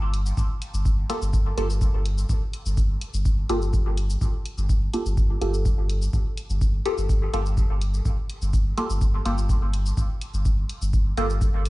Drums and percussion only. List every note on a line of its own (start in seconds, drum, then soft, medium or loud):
0.14 closed hi-hat medium
0.26 shaker soft
0.37 kick loud
0.37 shaker medium
0.62 closed hi-hat medium
0.74 shaker soft
0.85 kick loud
0.85 shaker medium
1.10 closed hi-hat medium
1.22 shaker soft
1.33 kick loud
1.33 shaker medium
1.58 closed hi-hat medium
1.70 shaker soft
1.81 kick loud
1.81 shaker medium
2.06 closed hi-hat medium
2.18 shaker soft
2.29 kick loud
2.29 shaker medium
2.53 closed hi-hat medium
2.66 shaker soft
2.77 kick loud
2.77 shaker medium
3.01 closed hi-hat medium
3.14 shaker soft
3.25 kick loud
3.25 shaker medium
3.49 closed hi-hat medium
3.62 shaker soft
3.73 kick loud
3.73 shaker soft
3.97 closed hi-hat medium
4.10 shaker soft
4.21 kick loud
4.21 shaker medium
4.46 closed hi-hat medium
4.58 shaker soft
4.69 kick loud
4.69 shaker medium
4.94 closed hi-hat medium
5.06 shaker soft
5.17 kick loud
5.17 shaker soft
5.42 closed hi-hat medium
5.54 shaker soft
5.65 kick loud
5.65 shaker soft
5.90 closed hi-hat medium
6.02 shaker soft
6.13 kick loud
6.13 shaker medium
6.37 closed hi-hat medium
6.50 shaker soft
6.61 kick loud
6.61 shaker soft
6.86 closed hi-hat medium
6.98 shaker soft
7.09 kick loud
7.09 shaker soft
7.34 closed hi-hat medium
7.46 shaker soft
7.57 kick loud
7.57 shaker soft
7.81 closed hi-hat medium
7.94 shaker soft
8.05 kick loud
8.05 shaker soft
8.30 closed hi-hat medium
8.42 shaker soft
8.53 kick loud
8.53 shaker soft
8.78 closed hi-hat medium
8.90 shaker soft
9.01 kick loud
9.01 shaker soft
9.26 closed hi-hat medium
9.38 shaker soft
9.49 kick loud
9.49 shaker soft
9.74 closed hi-hat medium
9.86 shaker soft
9.97 kick loud
9.97 shaker soft
10.21 closed hi-hat medium
10.34 shaker soft
10.45 kick loud
10.45 shaker soft
10.69 closed hi-hat medium
10.82 shaker soft
10.93 kick loud
10.93 shaker soft
11.17 closed hi-hat medium
11.30 shaker soft
11.41 kick loud
11.41 shaker soft
11.65 closed hi-hat medium